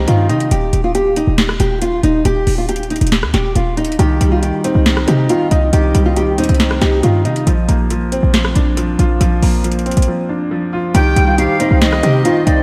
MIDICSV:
0, 0, Header, 1, 7, 480
1, 0, Start_track
1, 0, Key_signature, -3, "minor"
1, 0, Tempo, 434783
1, 565, Time_signature, 4, 2, 24, 8
1, 13942, End_track
2, 0, Start_track
2, 0, Title_t, "Ambient pad"
2, 0, Program_c, 0, 92
2, 12084, Note_on_c, 0, 72, 85
2, 12084, Note_on_c, 0, 79, 78
2, 12085, Note_on_c, 0, 87, 97
2, 13942, Note_off_c, 0, 72, 0
2, 13942, Note_off_c, 0, 79, 0
2, 13942, Note_off_c, 0, 87, 0
2, 13942, End_track
3, 0, Start_track
3, 0, Title_t, "Flute"
3, 0, Program_c, 1, 73
3, 12086, Note_on_c, 1, 79, 113
3, 12537, Note_off_c, 1, 79, 0
3, 12566, Note_on_c, 1, 77, 92
3, 13017, Note_off_c, 1, 77, 0
3, 13046, Note_on_c, 1, 75, 93
3, 13723, Note_off_c, 1, 75, 0
3, 13764, Note_on_c, 1, 74, 80
3, 13942, Note_off_c, 1, 74, 0
3, 13942, End_track
4, 0, Start_track
4, 0, Title_t, "Nylon-string guitar"
4, 0, Program_c, 2, 24
4, 90, Note_on_c, 2, 65, 80
4, 285, Note_off_c, 2, 65, 0
4, 324, Note_on_c, 2, 63, 83
4, 520, Note_off_c, 2, 63, 0
4, 565, Note_on_c, 2, 67, 93
4, 903, Note_off_c, 2, 67, 0
4, 926, Note_on_c, 2, 65, 70
4, 1024, Note_off_c, 2, 65, 0
4, 1046, Note_on_c, 2, 67, 82
4, 1242, Note_off_c, 2, 67, 0
4, 1286, Note_on_c, 2, 63, 87
4, 1482, Note_off_c, 2, 63, 0
4, 1768, Note_on_c, 2, 67, 82
4, 1963, Note_off_c, 2, 67, 0
4, 2006, Note_on_c, 2, 65, 86
4, 2202, Note_off_c, 2, 65, 0
4, 2244, Note_on_c, 2, 63, 86
4, 2441, Note_off_c, 2, 63, 0
4, 2487, Note_on_c, 2, 67, 99
4, 2824, Note_off_c, 2, 67, 0
4, 2847, Note_on_c, 2, 65, 76
4, 2944, Note_off_c, 2, 65, 0
4, 2967, Note_on_c, 2, 67, 79
4, 3162, Note_off_c, 2, 67, 0
4, 3206, Note_on_c, 2, 63, 84
4, 3402, Note_off_c, 2, 63, 0
4, 3686, Note_on_c, 2, 67, 84
4, 3882, Note_off_c, 2, 67, 0
4, 3927, Note_on_c, 2, 65, 84
4, 4123, Note_off_c, 2, 65, 0
4, 4164, Note_on_c, 2, 63, 85
4, 4360, Note_off_c, 2, 63, 0
4, 4407, Note_on_c, 2, 67, 97
4, 4744, Note_off_c, 2, 67, 0
4, 4764, Note_on_c, 2, 65, 68
4, 4863, Note_off_c, 2, 65, 0
4, 4885, Note_on_c, 2, 67, 75
4, 5081, Note_off_c, 2, 67, 0
4, 5128, Note_on_c, 2, 63, 85
4, 5323, Note_off_c, 2, 63, 0
4, 5610, Note_on_c, 2, 67, 85
4, 5804, Note_off_c, 2, 67, 0
4, 5845, Note_on_c, 2, 65, 92
4, 6041, Note_off_c, 2, 65, 0
4, 6083, Note_on_c, 2, 63, 82
4, 6280, Note_off_c, 2, 63, 0
4, 6327, Note_on_c, 2, 67, 94
4, 6664, Note_off_c, 2, 67, 0
4, 6685, Note_on_c, 2, 65, 76
4, 6783, Note_off_c, 2, 65, 0
4, 6808, Note_on_c, 2, 67, 77
4, 7003, Note_off_c, 2, 67, 0
4, 7043, Note_on_c, 2, 63, 86
4, 7240, Note_off_c, 2, 63, 0
4, 7523, Note_on_c, 2, 67, 85
4, 7720, Note_off_c, 2, 67, 0
4, 7762, Note_on_c, 2, 65, 81
4, 7959, Note_off_c, 2, 65, 0
4, 8003, Note_on_c, 2, 63, 82
4, 8200, Note_off_c, 2, 63, 0
4, 12081, Note_on_c, 2, 67, 95
4, 12421, Note_off_c, 2, 67, 0
4, 12445, Note_on_c, 2, 65, 69
4, 12543, Note_off_c, 2, 65, 0
4, 12565, Note_on_c, 2, 67, 83
4, 12761, Note_off_c, 2, 67, 0
4, 12808, Note_on_c, 2, 63, 85
4, 13003, Note_off_c, 2, 63, 0
4, 13283, Note_on_c, 2, 67, 81
4, 13480, Note_off_c, 2, 67, 0
4, 13526, Note_on_c, 2, 65, 90
4, 13722, Note_off_c, 2, 65, 0
4, 13765, Note_on_c, 2, 63, 87
4, 13942, Note_off_c, 2, 63, 0
4, 13942, End_track
5, 0, Start_track
5, 0, Title_t, "Grand piano"
5, 0, Program_c, 3, 0
5, 0, Control_c, 3, 64, 127
5, 0, Note_on_c, 3, 51, 71
5, 0, Note_on_c, 3, 55, 77
5, 0, Note_on_c, 3, 60, 94
5, 0, Note_on_c, 3, 63, 81
5, 0, Note_on_c, 3, 75, 85
5, 87, Note_off_c, 3, 51, 0
5, 87, Note_on_c, 3, 51, 88
5, 325, Note_off_c, 3, 75, 0
5, 325, Note_on_c, 3, 75, 86
5, 565, Note_off_c, 3, 75, 0
5, 566, Note_off_c, 3, 51, 0
5, 566, Note_off_c, 3, 60, 0
5, 569, Note_off_c, 3, 63, 0
5, 582, Control_c, 3, 64, 0
5, 583, Note_off_c, 3, 55, 0
5, 807, Control_c, 3, 64, 127
5, 4403, Note_on_c, 3, 51, 90
5, 4417, Control_c, 3, 64, 0
5, 4589, Control_c, 3, 64, 127
5, 4646, Note_on_c, 3, 55, 81
5, 4871, Note_off_c, 3, 51, 0
5, 4887, Note_on_c, 3, 51, 75
5, 5126, Note_on_c, 3, 60, 93
5, 5351, Note_off_c, 3, 51, 0
5, 5368, Note_on_c, 3, 51, 70
5, 5608, Note_on_c, 3, 63, 80
5, 5829, Note_off_c, 3, 51, 0
5, 5845, Note_off_c, 3, 55, 0
5, 5846, Note_on_c, 3, 51, 83
5, 6084, Note_on_c, 3, 75, 82
5, 6309, Note_off_c, 3, 51, 0
5, 6325, Note_on_c, 3, 51, 89
5, 6326, Note_off_c, 3, 60, 0
5, 6562, Note_on_c, 3, 55, 76
5, 6789, Note_off_c, 3, 51, 0
5, 6806, Note_on_c, 3, 51, 76
5, 6807, Note_off_c, 3, 63, 0
5, 7049, Note_on_c, 3, 60, 96
5, 7268, Note_off_c, 3, 51, 0
5, 7284, Note_on_c, 3, 51, 74
5, 7285, Note_off_c, 3, 75, 0
5, 7524, Note_on_c, 3, 63, 80
5, 7751, Note_off_c, 3, 51, 0
5, 7764, Note_off_c, 3, 55, 0
5, 7767, Note_on_c, 3, 51, 87
5, 8004, Note_on_c, 3, 75, 85
5, 8244, Note_off_c, 3, 75, 0
5, 8245, Note_off_c, 3, 63, 0
5, 8246, Note_off_c, 3, 51, 0
5, 8246, Note_on_c, 3, 53, 85
5, 8247, Note_off_c, 3, 60, 0
5, 8260, Control_c, 3, 64, 0
5, 8468, Control_c, 3, 64, 127
5, 8481, Note_on_c, 3, 58, 68
5, 8714, Note_off_c, 3, 53, 0
5, 8730, Note_on_c, 3, 53, 78
5, 8967, Note_on_c, 3, 60, 93
5, 9189, Note_off_c, 3, 53, 0
5, 9205, Note_on_c, 3, 53, 69
5, 9447, Note_on_c, 3, 62, 85
5, 9667, Note_off_c, 3, 53, 0
5, 9683, Note_off_c, 3, 58, 0
5, 9684, Note_on_c, 3, 53, 83
5, 9924, Note_on_c, 3, 65, 84
5, 10146, Note_off_c, 3, 53, 0
5, 10163, Note_on_c, 3, 53, 91
5, 10166, Note_off_c, 3, 60, 0
5, 10409, Note_on_c, 3, 58, 73
5, 10628, Note_off_c, 3, 53, 0
5, 10644, Note_on_c, 3, 53, 72
5, 10646, Note_off_c, 3, 62, 0
5, 10885, Note_on_c, 3, 60, 92
5, 11110, Note_off_c, 3, 53, 0
5, 11125, Note_off_c, 3, 65, 0
5, 11127, Note_on_c, 3, 53, 71
5, 11363, Note_on_c, 3, 62, 77
5, 11588, Note_off_c, 3, 53, 0
5, 11605, Note_on_c, 3, 53, 79
5, 11607, Note_off_c, 3, 58, 0
5, 11845, Note_on_c, 3, 65, 85
5, 12082, Note_on_c, 3, 51, 91
5, 12084, Note_off_c, 3, 62, 0
5, 12085, Note_off_c, 3, 53, 0
5, 12085, Note_off_c, 3, 60, 0
5, 12085, Note_off_c, 3, 65, 0
5, 12099, Control_c, 3, 64, 0
5, 12298, Control_c, 3, 64, 127
5, 12325, Note_on_c, 3, 55, 81
5, 12547, Note_off_c, 3, 51, 0
5, 12564, Note_on_c, 3, 51, 70
5, 12803, Note_on_c, 3, 60, 97
5, 13030, Note_off_c, 3, 51, 0
5, 13047, Note_on_c, 3, 51, 82
5, 13280, Note_on_c, 3, 63, 83
5, 13512, Note_off_c, 3, 51, 0
5, 13525, Note_off_c, 3, 55, 0
5, 13529, Note_on_c, 3, 51, 92
5, 13762, Note_on_c, 3, 75, 90
5, 13942, Note_off_c, 3, 51, 0
5, 13942, Note_off_c, 3, 60, 0
5, 13942, Note_off_c, 3, 63, 0
5, 13942, Note_off_c, 3, 75, 0
5, 13942, End_track
6, 0, Start_track
6, 0, Title_t, "808-style bass"
6, 0, Program_c, 4, 38
6, 86, Note_on_c, 4, 43, 105
6, 326, Note_on_c, 4, 48, 100
6, 343, Note_off_c, 4, 43, 0
6, 554, Note_off_c, 4, 48, 0
6, 566, Note_on_c, 4, 27, 114
6, 796, Note_off_c, 4, 27, 0
6, 805, Note_on_c, 4, 27, 103
6, 1381, Note_off_c, 4, 27, 0
6, 1405, Note_on_c, 4, 27, 103
6, 1751, Note_off_c, 4, 27, 0
6, 1765, Note_on_c, 4, 27, 104
6, 2226, Note_off_c, 4, 27, 0
6, 2245, Note_on_c, 4, 27, 105
6, 2476, Note_off_c, 4, 27, 0
6, 2485, Note_on_c, 4, 27, 111
6, 2716, Note_off_c, 4, 27, 0
6, 2725, Note_on_c, 4, 27, 105
6, 3301, Note_off_c, 4, 27, 0
6, 3325, Note_on_c, 4, 27, 110
6, 3565, Note_on_c, 4, 39, 97
6, 3582, Note_off_c, 4, 27, 0
6, 3679, Note_off_c, 4, 39, 0
6, 3685, Note_on_c, 4, 27, 104
6, 3916, Note_off_c, 4, 27, 0
6, 3925, Note_on_c, 4, 27, 105
6, 4386, Note_off_c, 4, 27, 0
6, 4405, Note_on_c, 4, 36, 116
6, 4635, Note_off_c, 4, 36, 0
6, 4646, Note_on_c, 4, 36, 103
6, 4991, Note_off_c, 4, 36, 0
6, 5245, Note_on_c, 4, 36, 104
6, 5591, Note_off_c, 4, 36, 0
6, 5605, Note_on_c, 4, 48, 104
6, 5836, Note_off_c, 4, 48, 0
6, 6086, Note_on_c, 4, 36, 104
6, 6316, Note_off_c, 4, 36, 0
6, 6325, Note_on_c, 4, 36, 112
6, 6556, Note_off_c, 4, 36, 0
6, 6565, Note_on_c, 4, 36, 108
6, 7045, Note_on_c, 4, 39, 98
6, 7062, Note_off_c, 4, 36, 0
6, 7159, Note_off_c, 4, 39, 0
6, 7165, Note_on_c, 4, 36, 104
6, 7511, Note_off_c, 4, 36, 0
6, 7525, Note_on_c, 4, 36, 102
6, 7756, Note_off_c, 4, 36, 0
6, 7765, Note_on_c, 4, 43, 105
6, 8005, Note_on_c, 4, 48, 99
6, 8022, Note_off_c, 4, 43, 0
6, 8233, Note_off_c, 4, 48, 0
6, 8245, Note_on_c, 4, 34, 109
6, 8476, Note_off_c, 4, 34, 0
6, 8485, Note_on_c, 4, 34, 104
6, 9061, Note_off_c, 4, 34, 0
6, 9085, Note_on_c, 4, 34, 105
6, 9431, Note_off_c, 4, 34, 0
6, 9445, Note_on_c, 4, 34, 103
6, 9906, Note_off_c, 4, 34, 0
6, 9925, Note_on_c, 4, 34, 108
6, 10155, Note_off_c, 4, 34, 0
6, 10165, Note_on_c, 4, 34, 114
6, 10395, Note_off_c, 4, 34, 0
6, 10405, Note_on_c, 4, 34, 103
6, 10981, Note_off_c, 4, 34, 0
6, 11005, Note_on_c, 4, 34, 105
6, 11125, Note_off_c, 4, 34, 0
6, 12085, Note_on_c, 4, 36, 113
6, 12315, Note_off_c, 4, 36, 0
6, 12324, Note_on_c, 4, 36, 103
6, 12670, Note_off_c, 4, 36, 0
6, 12925, Note_on_c, 4, 36, 102
6, 13271, Note_off_c, 4, 36, 0
6, 13285, Note_on_c, 4, 48, 105
6, 13516, Note_off_c, 4, 48, 0
6, 13765, Note_on_c, 4, 36, 105
6, 13942, Note_off_c, 4, 36, 0
6, 13942, End_track
7, 0, Start_track
7, 0, Title_t, "Drums"
7, 85, Note_on_c, 9, 42, 77
7, 195, Note_off_c, 9, 42, 0
7, 326, Note_on_c, 9, 42, 57
7, 436, Note_off_c, 9, 42, 0
7, 446, Note_on_c, 9, 42, 57
7, 556, Note_off_c, 9, 42, 0
7, 566, Note_on_c, 9, 42, 93
7, 676, Note_off_c, 9, 42, 0
7, 806, Note_on_c, 9, 42, 83
7, 916, Note_off_c, 9, 42, 0
7, 1046, Note_on_c, 9, 42, 71
7, 1156, Note_off_c, 9, 42, 0
7, 1285, Note_on_c, 9, 42, 76
7, 1395, Note_off_c, 9, 42, 0
7, 1524, Note_on_c, 9, 38, 113
7, 1524, Note_on_c, 9, 42, 91
7, 1634, Note_off_c, 9, 42, 0
7, 1635, Note_off_c, 9, 38, 0
7, 1645, Note_on_c, 9, 37, 101
7, 1755, Note_off_c, 9, 37, 0
7, 1764, Note_on_c, 9, 42, 76
7, 1875, Note_off_c, 9, 42, 0
7, 2005, Note_on_c, 9, 42, 82
7, 2115, Note_off_c, 9, 42, 0
7, 2246, Note_on_c, 9, 42, 65
7, 2357, Note_off_c, 9, 42, 0
7, 2486, Note_on_c, 9, 42, 94
7, 2596, Note_off_c, 9, 42, 0
7, 2726, Note_on_c, 9, 46, 83
7, 2836, Note_off_c, 9, 46, 0
7, 2966, Note_on_c, 9, 42, 74
7, 3046, Note_off_c, 9, 42, 0
7, 3046, Note_on_c, 9, 42, 57
7, 3126, Note_off_c, 9, 42, 0
7, 3126, Note_on_c, 9, 42, 43
7, 3206, Note_off_c, 9, 42, 0
7, 3206, Note_on_c, 9, 42, 49
7, 3266, Note_off_c, 9, 42, 0
7, 3266, Note_on_c, 9, 42, 57
7, 3325, Note_off_c, 9, 42, 0
7, 3325, Note_on_c, 9, 42, 72
7, 3385, Note_off_c, 9, 42, 0
7, 3385, Note_on_c, 9, 42, 80
7, 3444, Note_off_c, 9, 42, 0
7, 3444, Note_on_c, 9, 42, 93
7, 3445, Note_on_c, 9, 38, 113
7, 3555, Note_off_c, 9, 38, 0
7, 3555, Note_off_c, 9, 42, 0
7, 3565, Note_on_c, 9, 37, 98
7, 3676, Note_off_c, 9, 37, 0
7, 3685, Note_on_c, 9, 42, 72
7, 3686, Note_on_c, 9, 38, 91
7, 3795, Note_off_c, 9, 42, 0
7, 3797, Note_off_c, 9, 38, 0
7, 3925, Note_on_c, 9, 42, 79
7, 4036, Note_off_c, 9, 42, 0
7, 4166, Note_on_c, 9, 42, 56
7, 4246, Note_off_c, 9, 42, 0
7, 4246, Note_on_c, 9, 42, 57
7, 4326, Note_off_c, 9, 42, 0
7, 4326, Note_on_c, 9, 42, 55
7, 4406, Note_off_c, 9, 42, 0
7, 4406, Note_on_c, 9, 42, 92
7, 4517, Note_off_c, 9, 42, 0
7, 4646, Note_on_c, 9, 42, 85
7, 4756, Note_off_c, 9, 42, 0
7, 4886, Note_on_c, 9, 42, 69
7, 4997, Note_off_c, 9, 42, 0
7, 5125, Note_on_c, 9, 42, 76
7, 5236, Note_off_c, 9, 42, 0
7, 5365, Note_on_c, 9, 38, 113
7, 5365, Note_on_c, 9, 42, 89
7, 5475, Note_off_c, 9, 42, 0
7, 5476, Note_off_c, 9, 38, 0
7, 5485, Note_on_c, 9, 37, 103
7, 5596, Note_off_c, 9, 37, 0
7, 5605, Note_on_c, 9, 42, 74
7, 5715, Note_off_c, 9, 42, 0
7, 5845, Note_on_c, 9, 42, 78
7, 5955, Note_off_c, 9, 42, 0
7, 6086, Note_on_c, 9, 42, 67
7, 6196, Note_off_c, 9, 42, 0
7, 6325, Note_on_c, 9, 42, 89
7, 6435, Note_off_c, 9, 42, 0
7, 6565, Note_on_c, 9, 42, 84
7, 6675, Note_off_c, 9, 42, 0
7, 6805, Note_on_c, 9, 42, 69
7, 6916, Note_off_c, 9, 42, 0
7, 7045, Note_on_c, 9, 42, 79
7, 7105, Note_off_c, 9, 42, 0
7, 7105, Note_on_c, 9, 42, 67
7, 7165, Note_off_c, 9, 42, 0
7, 7165, Note_on_c, 9, 42, 57
7, 7225, Note_off_c, 9, 42, 0
7, 7225, Note_on_c, 9, 42, 46
7, 7284, Note_off_c, 9, 42, 0
7, 7284, Note_on_c, 9, 38, 111
7, 7284, Note_on_c, 9, 42, 89
7, 7394, Note_off_c, 9, 42, 0
7, 7395, Note_off_c, 9, 38, 0
7, 7405, Note_on_c, 9, 37, 100
7, 7515, Note_off_c, 9, 37, 0
7, 7524, Note_on_c, 9, 42, 72
7, 7525, Note_on_c, 9, 38, 90
7, 7635, Note_off_c, 9, 42, 0
7, 7636, Note_off_c, 9, 38, 0
7, 7765, Note_on_c, 9, 42, 79
7, 7875, Note_off_c, 9, 42, 0
7, 8006, Note_on_c, 9, 42, 57
7, 8116, Note_off_c, 9, 42, 0
7, 8126, Note_on_c, 9, 42, 57
7, 8236, Note_off_c, 9, 42, 0
7, 8246, Note_on_c, 9, 42, 91
7, 8356, Note_off_c, 9, 42, 0
7, 8485, Note_on_c, 9, 42, 85
7, 8596, Note_off_c, 9, 42, 0
7, 8726, Note_on_c, 9, 42, 74
7, 8836, Note_off_c, 9, 42, 0
7, 8965, Note_on_c, 9, 42, 78
7, 9076, Note_off_c, 9, 42, 0
7, 9204, Note_on_c, 9, 42, 87
7, 9205, Note_on_c, 9, 38, 111
7, 9315, Note_off_c, 9, 38, 0
7, 9315, Note_off_c, 9, 42, 0
7, 9325, Note_on_c, 9, 37, 98
7, 9435, Note_off_c, 9, 37, 0
7, 9444, Note_on_c, 9, 42, 72
7, 9555, Note_off_c, 9, 42, 0
7, 9685, Note_on_c, 9, 42, 77
7, 9795, Note_off_c, 9, 42, 0
7, 9926, Note_on_c, 9, 42, 68
7, 10037, Note_off_c, 9, 42, 0
7, 10166, Note_on_c, 9, 42, 92
7, 10276, Note_off_c, 9, 42, 0
7, 10405, Note_on_c, 9, 46, 82
7, 10516, Note_off_c, 9, 46, 0
7, 10646, Note_on_c, 9, 42, 70
7, 10726, Note_off_c, 9, 42, 0
7, 10726, Note_on_c, 9, 42, 58
7, 10805, Note_off_c, 9, 42, 0
7, 10805, Note_on_c, 9, 42, 42
7, 10886, Note_off_c, 9, 42, 0
7, 10886, Note_on_c, 9, 42, 46
7, 10945, Note_off_c, 9, 42, 0
7, 10945, Note_on_c, 9, 42, 59
7, 11005, Note_off_c, 9, 42, 0
7, 11005, Note_on_c, 9, 42, 68
7, 11065, Note_off_c, 9, 42, 0
7, 11065, Note_on_c, 9, 42, 83
7, 11175, Note_off_c, 9, 42, 0
7, 12085, Note_on_c, 9, 42, 93
7, 12196, Note_off_c, 9, 42, 0
7, 12325, Note_on_c, 9, 42, 84
7, 12436, Note_off_c, 9, 42, 0
7, 12566, Note_on_c, 9, 42, 72
7, 12676, Note_off_c, 9, 42, 0
7, 12805, Note_on_c, 9, 42, 77
7, 12915, Note_off_c, 9, 42, 0
7, 13044, Note_on_c, 9, 42, 93
7, 13045, Note_on_c, 9, 38, 112
7, 13155, Note_off_c, 9, 38, 0
7, 13155, Note_off_c, 9, 42, 0
7, 13165, Note_on_c, 9, 37, 97
7, 13276, Note_off_c, 9, 37, 0
7, 13284, Note_on_c, 9, 42, 74
7, 13395, Note_off_c, 9, 42, 0
7, 13524, Note_on_c, 9, 42, 84
7, 13634, Note_off_c, 9, 42, 0
7, 13766, Note_on_c, 9, 42, 69
7, 13876, Note_off_c, 9, 42, 0
7, 13942, End_track
0, 0, End_of_file